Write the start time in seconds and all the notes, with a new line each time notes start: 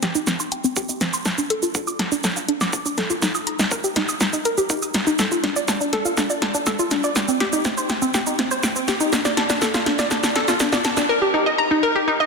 0.03 G4, snare, closed hi-hat, shaker
0.15 D#4, shaker
0.27 C4, kick, snare, shaker
0.40 C6, shaker
0.52 G5, closed hi-hat, shaker
0.64 C4, shaker
0.76 G4, kick, shaker
0.89 D#4, shaker
1.01 C4, snare, closed hi-hat, shaker
1.14 C6, shaker
1.26 A5, kick, snare, shaker
1.38 D4, shaker
1.50 A4, closed hi-hat
1.63 F4, shaker
1.75 D4, kick, shaker
1.87 D6, shaker
1.99 A5, snare, closed hi-hat
2.12 D4, shaker
2.24 A4, kick, snare, shaker
2.36 F4, shaker
2.48 D4, closed hi-hat
2.61 D6, snare, shaker
2.73 A5, kick, shaker
2.86 D4, shaker
2.98 A4, snare, closed hi-hat, shaker
3.10 F4, shaker
3.22 D#4, kick, snare, shaker
3.35 D#6, shaker
3.47 A#5, closed hi-hat
3.59 D#4, snare, shaker
3.71 A#4, kick, shaker
3.84 G4, shaker
3.96 D#4, snare, closed hi-hat, shaker
4.09 D#6, shaker
4.21 A#5, kick, snare, shaker
4.33 D#4, shaker
4.45 A#4, closed hi-hat, shaker
4.58 G4, shaker
4.70 D#4, kick, shaker
4.82 D#6, shaker
4.94 A#5, snare, closed hi-hat, shaker
5.07 D#4, shaker
5.19 A4, kick, snare, shaker
5.32 F4, shaker
5.44 D4, snare, closed hi-hat
5.56 D5, shaker
5.68 A5, kick, snare, shaker
5.81 D4, shaker
5.93 A4, snare, closed hi-hat
6.05 F4, shaker
6.17 D4, kick, snare, shaker
6.30 D5, shaker
6.42 A5, snare, closed hi-hat
6.54 D4, shaker
6.67 A4, kick, snare, shaker
6.79 F4, shaker
6.91 D4, snare, closed hi-hat, shaker
7.04 D5, shaker
7.16 G5, kick, snare, shaker
7.28 C4, shaker
7.40 G4, snare, closed hi-hat
7.53 D#4, shaker
7.65 C4, kick, snare, shaker
7.77 C5, shaker
7.89 G5, snare, closed hi-hat, shaker
8.02 C4, shaker
8.14 G4, kick, snare, shaker
8.27 D#4, shaker
8.39 C4, snare, closed hi-hat, shaker
8.51 C5, shaker
8.63 G5, kick, snare, shaker
8.76 C4, shaker
8.88 G4, snare, closed hi-hat, shaker
9.00 D#4, shaker
9.13 D4, kick, snare, shaker
9.25 D5, snare, shaker
9.37 A5, snare, closed hi-hat
9.50 D4, snare, shaker
9.62 A4, kick, snare, shaker
9.74 F4, snare, shaker
9.86 D4, snare, closed hi-hat
9.99 D5, snare, shaker
10.11 A5, kick, snare, shaker
10.23 D4, snare, shaker
10.35 A4, snare, closed hi-hat
10.48 F4, snare, shaker
10.60 D4, kick, snare, shaker
10.72 D5, snare, shaker
10.85 A5, snare, closed hi-hat, shaker
10.97 D4, snare, shaker
11.09 A#4
11.22 G4
11.34 D#4
11.46 D#5
11.58 A#5
11.71 D#4
11.83 A#4
11.96 G4
12.08 D#4
12.20 D#5